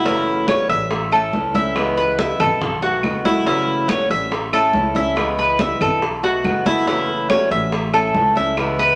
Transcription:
Already playing: F#1
0.05 C#3 E3 A3 C#4 E4 F#4, high bongo, high conga
0.27 high bongo, high conga
0.48 E3 A3 C#4 F#4 C#5, high bongo, high conga, claves
0.69 A1 E5, high bongo, high conga
0.91 muted steel-string acoustic guitar stroke, high bongo, high conga
1.12 A3 C#4 E4 A4, high conga, claves
1.33 C#2 E3 A3 C#4 E4, high bongo, low bongo, high conga
1.54 A3 C#4 E4 E5, high bongo, high conga
1.76 C#3 E3 G#3 B3 E4, high bongo, high conga, claves
1.97 B4, high bongo, high conga
2.19 E3 G#3 B3 E4 E5, high bongo, high conga
2.39 B1 A4, high bongo, high conga, low conga, claves
2.61 muted steel-string acoustic guitar stroke, high bongo, high conga, low conga
2.82 D#3 A3 B3 F#4, high conga
3.03 F#1 D#3 A3 B3 F#4, high bongo, low bongo, high conga, claves
3.25 D#3 A3 B3 E4 F#4, high bongo, high conga
3.46 C#3 E3 A3 C#4 E4 F#4, high bongo, high conga
3.68 high bongo, high conga
3.89 E3 A3 C#4 F#4 C#5, high bongo, high conga, claves
4.10 A1 E5, high bongo, high conga
4.31 muted steel-string acoustic guitar stroke, high bongo, high conga
4.53 A3 C#4 E4 A4, high conga, claves
4.74 C#2 E3 A3 C#4 E4, high bongo, low bongo, high conga
4.95 A3 C#4 E4 E5, high bongo, high conga
5.16 C#3 E3 G#3 B3 E4, high bongo, high conga, claves
5.38 B4, high bongo, high conga
5.59 E3 B3 E4 E5, high bongo, high conga
5.80 B1 A4, high bongo, high conga, low conga, claves
6.02 muted steel-string acoustic guitar stroke, high bongo, high conga
6.23 D#3 A3 B3 F#4, high conga
6.44 F#1 D#3 A3 B3 F#4, high bongo, low bongo, high conga, claves
6.65 D#3 A3 B3 E4 F#4, high bongo, high conga
6.87 C#3 E3 A3 C#4 E4 F#4, high bongo, high conga
7.09 high bongo, high conga
7.29 E3 A3 C#4 F#4 C#5, high bongo, high conga, claves
7.50 A1 E5, high bongo, high conga
7.72 muted steel-string acoustic guitar stroke, high bongo, high conga
7.93 A3 C#4 E4 A4, high conga, claves
8.14 C#2 E3 A3 C#4 E4, high bongo, low bongo, high conga
8.35 A3 C#4 E4 E5, high bongo, high conga
8.57 C#3 E3 G#3 B3 E4, high bongo, high conga, claves
8.79 B4, high bongo, high conga

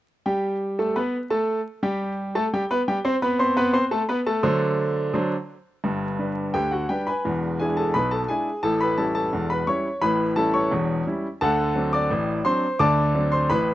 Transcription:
0.26 G3 G4 G5
0.79 A3 A4 A5
0.96 B3 B4 B5
1.30 A3 A4 A5
1.83 G3 G4 G5
2.35 A3 A4 A5
2.53 G3 G4 G5
2.71 B3 B4 B5
2.88 G3 G4 G5
3.05 C4 C5 C6
3.22 B3 B4 B5
3.39 C4 C5 C6
3.57 B3 B4 B5
3.73 C4 C5 C6
3.91 A3 A4 A5
4.09 B3 B4 B5
4.26 A3 A4 A5
4.43 D3 F#3 D4 C5
5.14 D3 F#3 D4 C5
5.84 G1 G2
6.19 G3 D4 B4
6.54 D2 D3 G4 G5
6.71 F#4 F#5
6.89 G3 D4 G4 B4 G5
7.07 B4 G#5 B5
7.25 E1 E2
7.59 G#3 D4 E4 G#4 G#5
7.77 A4 A5
7.94 B1 B2 B4 B5
8.11 A4 A5
8.28 G#3 D4 E4 G#4 G#5
8.63 A1 A2 A4 A5
8.81 B4 B5
8.98 G3 C#4 E4 A4 A5
9.15 A4 A5
9.33 E1 E2
9.50 B4 B5
9.67 G3 C#4 E4 C#5 C#6
10.01 A1 A2 B4 B5
10.36 G3 C#4 E4 A4 A5
10.54 C#5 C#6
10.71 E1 E2
11.07 G3 C#4 E4
11.41 D2 D3 A4 F#5 A5
11.75 F#3 C4 D4
11.93 D5 D6
12.11 A1 A2
12.45 F#3 C4 D4 C5 C6
12.79 D2 D3 D5 A5 D6
13.14 F#3 C4 D4
13.32 C5 C6
13.50 A1 A2 B4 B5

